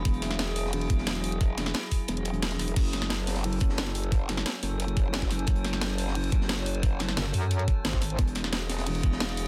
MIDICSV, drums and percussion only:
0, 0, Header, 1, 2, 480
1, 0, Start_track
1, 0, Key_signature, 3, "minor"
1, 0, Tempo, 338983
1, 74, Time_signature, 4, 2, 24, 8
1, 13421, End_track
2, 0, Start_track
2, 0, Title_t, "Drums"
2, 70, Note_on_c, 9, 42, 84
2, 73, Note_off_c, 9, 42, 0
2, 73, Note_on_c, 9, 36, 109
2, 73, Note_on_c, 9, 42, 99
2, 194, Note_off_c, 9, 42, 0
2, 194, Note_on_c, 9, 42, 46
2, 215, Note_off_c, 9, 36, 0
2, 313, Note_off_c, 9, 42, 0
2, 313, Note_on_c, 9, 40, 38
2, 313, Note_on_c, 9, 42, 74
2, 319, Note_off_c, 9, 42, 0
2, 319, Note_on_c, 9, 42, 65
2, 433, Note_off_c, 9, 40, 0
2, 433, Note_off_c, 9, 42, 0
2, 433, Note_on_c, 9, 40, 56
2, 433, Note_on_c, 9, 42, 39
2, 550, Note_on_c, 9, 38, 122
2, 553, Note_off_c, 9, 42, 0
2, 553, Note_on_c, 9, 42, 89
2, 554, Note_off_c, 9, 38, 0
2, 554, Note_off_c, 9, 42, 0
2, 554, Note_on_c, 9, 38, 114
2, 554, Note_on_c, 9, 42, 94
2, 575, Note_off_c, 9, 40, 0
2, 695, Note_off_c, 9, 38, 0
2, 695, Note_off_c, 9, 42, 0
2, 786, Note_on_c, 9, 42, 73
2, 793, Note_on_c, 9, 46, 80
2, 924, Note_on_c, 9, 38, 48
2, 928, Note_off_c, 9, 42, 0
2, 935, Note_off_c, 9, 46, 0
2, 1029, Note_on_c, 9, 46, 73
2, 1033, Note_on_c, 9, 42, 95
2, 1065, Note_off_c, 9, 38, 0
2, 1153, Note_off_c, 9, 42, 0
2, 1153, Note_on_c, 9, 42, 39
2, 1170, Note_off_c, 9, 46, 0
2, 1273, Note_off_c, 9, 42, 0
2, 1273, Note_on_c, 9, 36, 109
2, 1273, Note_on_c, 9, 42, 71
2, 1276, Note_off_c, 9, 42, 0
2, 1276, Note_on_c, 9, 42, 68
2, 1391, Note_on_c, 9, 38, 61
2, 1415, Note_off_c, 9, 36, 0
2, 1417, Note_off_c, 9, 42, 0
2, 1513, Note_off_c, 9, 38, 0
2, 1513, Note_on_c, 9, 38, 117
2, 1513, Note_on_c, 9, 42, 92
2, 1515, Note_off_c, 9, 42, 0
2, 1515, Note_on_c, 9, 42, 89
2, 1517, Note_off_c, 9, 38, 0
2, 1517, Note_on_c, 9, 38, 127
2, 1632, Note_off_c, 9, 38, 0
2, 1632, Note_on_c, 9, 38, 57
2, 1633, Note_off_c, 9, 42, 0
2, 1633, Note_on_c, 9, 42, 38
2, 1753, Note_off_c, 9, 42, 0
2, 1753, Note_on_c, 9, 42, 61
2, 1753, Note_on_c, 9, 46, 79
2, 1773, Note_off_c, 9, 38, 0
2, 1873, Note_off_c, 9, 42, 0
2, 1873, Note_on_c, 9, 42, 40
2, 1895, Note_off_c, 9, 46, 0
2, 1993, Note_off_c, 9, 42, 0
2, 1993, Note_on_c, 9, 36, 116
2, 1993, Note_on_c, 9, 42, 102
2, 1995, Note_off_c, 9, 42, 0
2, 1995, Note_on_c, 9, 42, 83
2, 2135, Note_off_c, 9, 36, 0
2, 2136, Note_off_c, 9, 42, 0
2, 2233, Note_on_c, 9, 40, 39
2, 2233, Note_on_c, 9, 42, 76
2, 2240, Note_off_c, 9, 42, 0
2, 2240, Note_on_c, 9, 42, 67
2, 2242, Note_on_c, 9, 38, 53
2, 2353, Note_off_c, 9, 40, 0
2, 2353, Note_off_c, 9, 42, 0
2, 2353, Note_on_c, 9, 40, 59
2, 2353, Note_on_c, 9, 42, 41
2, 2383, Note_off_c, 9, 38, 0
2, 2464, Note_off_c, 9, 42, 0
2, 2464, Note_on_c, 9, 42, 96
2, 2465, Note_on_c, 9, 38, 120
2, 2473, Note_off_c, 9, 38, 0
2, 2473, Note_off_c, 9, 42, 0
2, 2473, Note_on_c, 9, 38, 119
2, 2473, Note_on_c, 9, 42, 100
2, 2495, Note_off_c, 9, 40, 0
2, 2615, Note_off_c, 9, 38, 0
2, 2615, Note_off_c, 9, 42, 0
2, 2707, Note_on_c, 9, 42, 68
2, 2713, Note_on_c, 9, 36, 60
2, 2713, Note_on_c, 9, 46, 82
2, 2849, Note_off_c, 9, 42, 0
2, 2855, Note_off_c, 9, 36, 0
2, 2855, Note_off_c, 9, 46, 0
2, 2946, Note_on_c, 9, 42, 92
2, 2953, Note_off_c, 9, 42, 0
2, 2953, Note_on_c, 9, 42, 100
2, 3074, Note_off_c, 9, 42, 0
2, 3074, Note_on_c, 9, 42, 40
2, 3186, Note_off_c, 9, 42, 0
2, 3186, Note_on_c, 9, 42, 88
2, 3194, Note_off_c, 9, 42, 0
2, 3194, Note_on_c, 9, 42, 72
2, 3306, Note_off_c, 9, 42, 0
2, 3306, Note_on_c, 9, 42, 40
2, 3434, Note_off_c, 9, 42, 0
2, 3434, Note_on_c, 9, 38, 119
2, 3434, Note_on_c, 9, 42, 95
2, 3440, Note_off_c, 9, 42, 0
2, 3440, Note_on_c, 9, 42, 58
2, 3550, Note_off_c, 9, 42, 0
2, 3550, Note_on_c, 9, 42, 85
2, 3554, Note_off_c, 9, 38, 0
2, 3554, Note_off_c, 9, 42, 0
2, 3554, Note_on_c, 9, 38, 35
2, 3554, Note_on_c, 9, 42, 37
2, 3668, Note_off_c, 9, 42, 0
2, 3668, Note_on_c, 9, 42, 36
2, 3674, Note_on_c, 9, 40, 34
2, 3674, Note_on_c, 9, 46, 81
2, 3695, Note_off_c, 9, 38, 0
2, 3787, Note_off_c, 9, 42, 0
2, 3787, Note_on_c, 9, 42, 61
2, 3794, Note_off_c, 9, 42, 0
2, 3794, Note_on_c, 9, 42, 38
2, 3815, Note_off_c, 9, 40, 0
2, 3815, Note_off_c, 9, 46, 0
2, 3912, Note_off_c, 9, 42, 0
2, 3912, Note_on_c, 9, 42, 85
2, 3914, Note_off_c, 9, 42, 0
2, 3914, Note_on_c, 9, 36, 120
2, 3914, Note_on_c, 9, 42, 98
2, 3914, Note_on_c, 9, 49, 77
2, 4041, Note_off_c, 9, 42, 0
2, 4041, Note_on_c, 9, 42, 47
2, 4055, Note_off_c, 9, 36, 0
2, 4055, Note_off_c, 9, 49, 0
2, 4147, Note_off_c, 9, 42, 0
2, 4147, Note_on_c, 9, 42, 69
2, 4154, Note_off_c, 9, 42, 0
2, 4154, Note_on_c, 9, 40, 41
2, 4154, Note_on_c, 9, 42, 78
2, 4274, Note_off_c, 9, 40, 0
2, 4274, Note_off_c, 9, 42, 0
2, 4274, Note_on_c, 9, 40, 60
2, 4274, Note_on_c, 9, 42, 40
2, 4384, Note_on_c, 9, 38, 127
2, 4394, Note_off_c, 9, 38, 0
2, 4394, Note_off_c, 9, 42, 0
2, 4394, Note_on_c, 9, 38, 119
2, 4394, Note_on_c, 9, 42, 100
2, 4398, Note_off_c, 9, 42, 0
2, 4398, Note_on_c, 9, 42, 100
2, 4415, Note_off_c, 9, 40, 0
2, 4535, Note_off_c, 9, 38, 0
2, 4539, Note_off_c, 9, 42, 0
2, 4634, Note_on_c, 9, 46, 78
2, 4638, Note_on_c, 9, 38, 112
2, 4642, Note_on_c, 9, 42, 79
2, 4750, Note_off_c, 9, 42, 0
2, 4750, Note_on_c, 9, 42, 82
2, 4758, Note_off_c, 9, 38, 0
2, 4758, Note_on_c, 9, 38, 103
2, 4775, Note_off_c, 9, 46, 0
2, 4873, Note_off_c, 9, 42, 0
2, 4873, Note_on_c, 9, 42, 90
2, 4881, Note_on_c, 9, 46, 73
2, 4900, Note_off_c, 9, 38, 0
2, 4994, Note_off_c, 9, 42, 0
2, 4994, Note_on_c, 9, 42, 39
2, 5023, Note_off_c, 9, 46, 0
2, 5100, Note_off_c, 9, 42, 0
2, 5100, Note_on_c, 9, 42, 66
2, 5113, Note_on_c, 9, 36, 111
2, 5114, Note_off_c, 9, 42, 0
2, 5114, Note_on_c, 9, 42, 67
2, 5229, Note_on_c, 9, 38, 62
2, 5255, Note_off_c, 9, 36, 0
2, 5255, Note_off_c, 9, 42, 0
2, 5349, Note_on_c, 9, 42, 92
2, 5354, Note_off_c, 9, 38, 0
2, 5354, Note_off_c, 9, 42, 0
2, 5354, Note_on_c, 9, 38, 124
2, 5354, Note_on_c, 9, 42, 96
2, 5366, Note_off_c, 9, 38, 0
2, 5366, Note_on_c, 9, 38, 107
2, 5474, Note_off_c, 9, 38, 0
2, 5474, Note_off_c, 9, 42, 0
2, 5474, Note_on_c, 9, 38, 59
2, 5474, Note_on_c, 9, 42, 39
2, 5593, Note_off_c, 9, 42, 0
2, 5593, Note_on_c, 9, 42, 61
2, 5594, Note_on_c, 9, 46, 78
2, 5616, Note_off_c, 9, 38, 0
2, 5714, Note_off_c, 9, 42, 0
2, 5714, Note_on_c, 9, 42, 37
2, 5735, Note_off_c, 9, 46, 0
2, 5833, Note_on_c, 9, 36, 123
2, 5834, Note_off_c, 9, 42, 0
2, 5834, Note_on_c, 9, 42, 95
2, 5846, Note_off_c, 9, 42, 0
2, 5846, Note_on_c, 9, 42, 88
2, 5975, Note_off_c, 9, 36, 0
2, 5987, Note_off_c, 9, 42, 0
2, 6074, Note_on_c, 9, 40, 43
2, 6074, Note_on_c, 9, 42, 76
2, 6075, Note_off_c, 9, 42, 0
2, 6075, Note_on_c, 9, 38, 51
2, 6075, Note_on_c, 9, 42, 73
2, 6193, Note_off_c, 9, 40, 0
2, 6193, Note_off_c, 9, 42, 0
2, 6193, Note_on_c, 9, 40, 61
2, 6193, Note_on_c, 9, 42, 38
2, 6217, Note_off_c, 9, 38, 0
2, 6313, Note_off_c, 9, 42, 0
2, 6313, Note_on_c, 9, 38, 127
2, 6313, Note_on_c, 9, 42, 100
2, 6314, Note_off_c, 9, 38, 0
2, 6314, Note_on_c, 9, 38, 123
2, 6315, Note_off_c, 9, 42, 0
2, 6315, Note_on_c, 9, 42, 90
2, 6335, Note_off_c, 9, 40, 0
2, 6455, Note_off_c, 9, 38, 0
2, 6456, Note_off_c, 9, 42, 0
2, 6552, Note_on_c, 9, 42, 71
2, 6553, Note_on_c, 9, 46, 76
2, 6694, Note_off_c, 9, 42, 0
2, 6695, Note_off_c, 9, 46, 0
2, 6793, Note_on_c, 9, 42, 90
2, 6795, Note_off_c, 9, 42, 0
2, 6795, Note_on_c, 9, 42, 91
2, 6913, Note_off_c, 9, 42, 0
2, 6913, Note_on_c, 9, 42, 39
2, 7033, Note_off_c, 9, 42, 0
2, 7033, Note_on_c, 9, 42, 64
2, 7034, Note_off_c, 9, 42, 0
2, 7034, Note_on_c, 9, 36, 116
2, 7034, Note_on_c, 9, 42, 71
2, 7175, Note_off_c, 9, 36, 0
2, 7176, Note_off_c, 9, 42, 0
2, 7263, Note_on_c, 9, 38, 119
2, 7273, Note_off_c, 9, 38, 0
2, 7273, Note_on_c, 9, 38, 127
2, 7273, Note_on_c, 9, 42, 93
2, 7286, Note_off_c, 9, 42, 0
2, 7286, Note_on_c, 9, 42, 77
2, 7389, Note_off_c, 9, 38, 0
2, 7389, Note_on_c, 9, 38, 55
2, 7393, Note_off_c, 9, 38, 0
2, 7393, Note_off_c, 9, 42, 0
2, 7393, Note_on_c, 9, 38, 38
2, 7393, Note_on_c, 9, 42, 37
2, 7394, Note_on_c, 9, 36, 63
2, 7514, Note_on_c, 9, 40, 36
2, 7514, Note_on_c, 9, 46, 78
2, 7522, Note_off_c, 9, 42, 0
2, 7522, Note_on_c, 9, 42, 61
2, 7535, Note_off_c, 9, 36, 0
2, 7535, Note_off_c, 9, 38, 0
2, 7634, Note_off_c, 9, 42, 0
2, 7634, Note_on_c, 9, 42, 37
2, 7655, Note_off_c, 9, 40, 0
2, 7655, Note_off_c, 9, 46, 0
2, 7741, Note_off_c, 9, 42, 0
2, 7741, Note_on_c, 9, 42, 82
2, 7754, Note_off_c, 9, 42, 0
2, 7754, Note_on_c, 9, 36, 127
2, 7754, Note_on_c, 9, 42, 96
2, 7866, Note_off_c, 9, 42, 0
2, 7866, Note_on_c, 9, 42, 45
2, 7895, Note_off_c, 9, 36, 0
2, 7993, Note_off_c, 9, 42, 0
2, 7993, Note_on_c, 9, 40, 41
2, 7993, Note_on_c, 9, 42, 68
2, 7998, Note_off_c, 9, 42, 0
2, 7998, Note_on_c, 9, 42, 78
2, 8114, Note_off_c, 9, 40, 0
2, 8114, Note_off_c, 9, 42, 0
2, 8114, Note_on_c, 9, 40, 58
2, 8114, Note_on_c, 9, 42, 39
2, 8231, Note_on_c, 9, 38, 112
2, 8233, Note_off_c, 9, 38, 0
2, 8233, Note_off_c, 9, 42, 0
2, 8233, Note_on_c, 9, 38, 127
2, 8233, Note_on_c, 9, 42, 96
2, 8255, Note_off_c, 9, 40, 0
2, 8375, Note_off_c, 9, 38, 0
2, 8375, Note_off_c, 9, 42, 0
2, 8473, Note_on_c, 9, 46, 80
2, 8481, Note_on_c, 9, 42, 73
2, 8601, Note_on_c, 9, 38, 50
2, 8615, Note_off_c, 9, 46, 0
2, 8622, Note_off_c, 9, 42, 0
2, 8713, Note_on_c, 9, 42, 86
2, 8717, Note_on_c, 9, 46, 78
2, 8743, Note_off_c, 9, 38, 0
2, 8833, Note_off_c, 9, 42, 0
2, 8833, Note_on_c, 9, 42, 37
2, 8858, Note_off_c, 9, 46, 0
2, 8951, Note_off_c, 9, 42, 0
2, 8951, Note_on_c, 9, 42, 71
2, 8953, Note_off_c, 9, 42, 0
2, 8953, Note_on_c, 9, 42, 68
2, 8954, Note_on_c, 9, 36, 118
2, 9078, Note_on_c, 9, 38, 62
2, 9095, Note_off_c, 9, 36, 0
2, 9095, Note_off_c, 9, 42, 0
2, 9193, Note_off_c, 9, 38, 0
2, 9193, Note_on_c, 9, 38, 125
2, 9193, Note_on_c, 9, 42, 89
2, 9195, Note_off_c, 9, 42, 0
2, 9195, Note_on_c, 9, 42, 87
2, 9196, Note_off_c, 9, 38, 0
2, 9196, Note_on_c, 9, 38, 108
2, 9313, Note_off_c, 9, 42, 0
2, 9313, Note_on_c, 9, 42, 37
2, 9324, Note_off_c, 9, 38, 0
2, 9324, Note_on_c, 9, 38, 57
2, 9429, Note_off_c, 9, 42, 0
2, 9429, Note_on_c, 9, 42, 61
2, 9433, Note_on_c, 9, 46, 78
2, 9466, Note_off_c, 9, 38, 0
2, 9553, Note_off_c, 9, 42, 0
2, 9553, Note_on_c, 9, 42, 36
2, 9575, Note_off_c, 9, 46, 0
2, 9673, Note_off_c, 9, 42, 0
2, 9673, Note_on_c, 9, 36, 127
2, 9673, Note_on_c, 9, 42, 90
2, 9674, Note_off_c, 9, 42, 0
2, 9674, Note_on_c, 9, 42, 93
2, 9815, Note_off_c, 9, 36, 0
2, 9816, Note_off_c, 9, 42, 0
2, 9906, Note_on_c, 9, 42, 65
2, 9913, Note_off_c, 9, 42, 0
2, 9913, Note_on_c, 9, 40, 39
2, 9913, Note_on_c, 9, 42, 72
2, 9914, Note_on_c, 9, 38, 53
2, 10033, Note_off_c, 9, 40, 0
2, 10033, Note_off_c, 9, 42, 0
2, 10033, Note_on_c, 9, 40, 58
2, 10033, Note_on_c, 9, 42, 38
2, 10055, Note_off_c, 9, 38, 0
2, 10153, Note_off_c, 9, 42, 0
2, 10153, Note_on_c, 9, 38, 127
2, 10153, Note_on_c, 9, 42, 87
2, 10156, Note_off_c, 9, 42, 0
2, 10156, Note_on_c, 9, 42, 93
2, 10167, Note_off_c, 9, 38, 0
2, 10167, Note_on_c, 9, 38, 122
2, 10175, Note_off_c, 9, 40, 0
2, 10297, Note_off_c, 9, 42, 0
2, 10308, Note_off_c, 9, 38, 0
2, 10383, Note_on_c, 9, 42, 75
2, 10393, Note_on_c, 9, 46, 82
2, 10525, Note_off_c, 9, 42, 0
2, 10534, Note_off_c, 9, 46, 0
2, 10630, Note_on_c, 9, 42, 94
2, 10633, Note_off_c, 9, 42, 0
2, 10633, Note_on_c, 9, 42, 83
2, 10753, Note_off_c, 9, 42, 0
2, 10753, Note_on_c, 9, 42, 37
2, 10873, Note_off_c, 9, 42, 0
2, 10873, Note_on_c, 9, 36, 114
2, 10873, Note_on_c, 9, 42, 64
2, 10874, Note_off_c, 9, 42, 0
2, 10874, Note_on_c, 9, 42, 74
2, 11015, Note_off_c, 9, 36, 0
2, 11016, Note_off_c, 9, 42, 0
2, 11110, Note_on_c, 9, 38, 122
2, 11113, Note_off_c, 9, 38, 0
2, 11113, Note_on_c, 9, 38, 123
2, 11113, Note_on_c, 9, 42, 87
2, 11116, Note_off_c, 9, 42, 0
2, 11116, Note_on_c, 9, 42, 83
2, 11233, Note_off_c, 9, 38, 0
2, 11233, Note_off_c, 9, 42, 0
2, 11233, Note_on_c, 9, 36, 67
2, 11233, Note_on_c, 9, 38, 37
2, 11233, Note_on_c, 9, 42, 36
2, 11350, Note_off_c, 9, 42, 0
2, 11350, Note_on_c, 9, 42, 69
2, 11353, Note_on_c, 9, 40, 33
2, 11353, Note_on_c, 9, 46, 82
2, 11375, Note_off_c, 9, 36, 0
2, 11375, Note_off_c, 9, 38, 0
2, 11473, Note_off_c, 9, 42, 0
2, 11473, Note_on_c, 9, 42, 35
2, 11494, Note_off_c, 9, 40, 0
2, 11494, Note_off_c, 9, 46, 0
2, 11589, Note_off_c, 9, 42, 0
2, 11589, Note_on_c, 9, 42, 82
2, 11593, Note_off_c, 9, 42, 0
2, 11593, Note_on_c, 9, 36, 122
2, 11593, Note_on_c, 9, 42, 87
2, 11716, Note_off_c, 9, 42, 0
2, 11716, Note_on_c, 9, 42, 48
2, 11735, Note_off_c, 9, 36, 0
2, 11824, Note_off_c, 9, 42, 0
2, 11824, Note_on_c, 9, 42, 68
2, 11833, Note_off_c, 9, 42, 0
2, 11833, Note_on_c, 9, 40, 35
2, 11833, Note_on_c, 9, 42, 69
2, 11953, Note_off_c, 9, 40, 0
2, 11953, Note_off_c, 9, 42, 0
2, 11953, Note_on_c, 9, 40, 55
2, 11953, Note_on_c, 9, 42, 35
2, 12073, Note_off_c, 9, 42, 0
2, 12073, Note_on_c, 9, 38, 119
2, 12073, Note_on_c, 9, 42, 88
2, 12076, Note_off_c, 9, 38, 0
2, 12076, Note_on_c, 9, 38, 120
2, 12080, Note_off_c, 9, 42, 0
2, 12080, Note_on_c, 9, 42, 91
2, 12095, Note_off_c, 9, 40, 0
2, 12218, Note_off_c, 9, 38, 0
2, 12222, Note_off_c, 9, 42, 0
2, 12310, Note_on_c, 9, 38, 119
2, 12313, Note_on_c, 9, 46, 88
2, 12317, Note_on_c, 9, 42, 80
2, 12438, Note_off_c, 9, 42, 0
2, 12438, Note_on_c, 9, 42, 82
2, 12439, Note_off_c, 9, 38, 0
2, 12439, Note_on_c, 9, 38, 103
2, 12455, Note_off_c, 9, 46, 0
2, 12551, Note_on_c, 9, 46, 87
2, 12553, Note_off_c, 9, 42, 0
2, 12553, Note_on_c, 9, 42, 84
2, 12581, Note_off_c, 9, 38, 0
2, 12673, Note_off_c, 9, 42, 0
2, 12673, Note_on_c, 9, 42, 37
2, 12692, Note_off_c, 9, 46, 0
2, 12790, Note_off_c, 9, 42, 0
2, 12790, Note_on_c, 9, 42, 64
2, 12793, Note_off_c, 9, 42, 0
2, 12793, Note_on_c, 9, 36, 105
2, 12793, Note_on_c, 9, 42, 66
2, 12913, Note_on_c, 9, 38, 65
2, 12934, Note_off_c, 9, 42, 0
2, 12935, Note_off_c, 9, 36, 0
2, 13033, Note_off_c, 9, 38, 0
2, 13033, Note_on_c, 9, 38, 119
2, 13033, Note_on_c, 9, 42, 86
2, 13037, Note_off_c, 9, 38, 0
2, 13037, Note_on_c, 9, 38, 112
2, 13040, Note_off_c, 9, 42, 0
2, 13040, Note_on_c, 9, 42, 89
2, 13153, Note_off_c, 9, 42, 0
2, 13153, Note_on_c, 9, 42, 36
2, 13158, Note_off_c, 9, 38, 0
2, 13158, Note_on_c, 9, 38, 52
2, 13273, Note_on_c, 9, 46, 83
2, 13277, Note_off_c, 9, 42, 0
2, 13277, Note_on_c, 9, 42, 70
2, 13300, Note_off_c, 9, 38, 0
2, 13415, Note_off_c, 9, 46, 0
2, 13419, Note_off_c, 9, 42, 0
2, 13421, End_track
0, 0, End_of_file